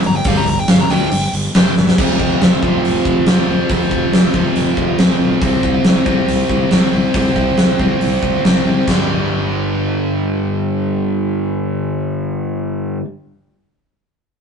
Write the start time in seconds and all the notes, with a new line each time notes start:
0.03 G1 A#5, open hi-hat
0.16 G5
0.24 G1 G2 D3 G3 F5, kick, open hi-hat
0.37 A#5
0.46 G1 A#5, open hi-hat
0.60 G5
0.68 G1 F5, snare, open hi-hat
0.81 A#5
0.90 D2 G2 D3 G3 G5, open hi-hat
1.11 G1, open hi-hat
1.33 G1, open hi-hat
1.55 F1 G2 D3 G3, snare, open hi-hat
1.77 G1, snare
1.88 snare
1.98 F1 F2 C3 F3, kick, crash
2.20 F1, kick
2.41 F1, snare, open hi-hat
2.62 F1 F2 C3 F3, kick
2.85 F1, open hi-hat
3.05 F1, kick
3.26 F1 F2 C3 F3, snare, open hi-hat
3.49 F1
3.69 F1 F2 C3 F3, kick, open hi-hat
3.91 F1, kick
4.12 F1, snare, open hi-hat
4.34 F1 F2 C3 F3, kick
4.56 F1, open hi-hat
4.77 F1, kick
4.98 F1 F2 C3 F3, snare, open hi-hat
5.21 B1
5.41 C2 C3 G3 C4, kick, open hi-hat
5.63 C2, kick
5.84 C2, snare, open hi-hat
6.05 C2 C3 G3 C4, kick
6.28 C2, open hi-hat
6.49 C2, kick
6.71 C2 C3 G3 C4, snare, open hi-hat
6.93 C2
7.14 C2 C3 G3 C4, kick, open hi-hat
7.36 C2, kick
7.57 C2, snare, open hi-hat
7.79 C2 C3 G3 C4, kick
8.01 C2, open hi-hat
8.23 C2, kick
8.44 C2 C3 G3 C4, snare, open hi-hat
8.66 C2
8.87 G1 G2 D3, kick, snare, china
8.92 G3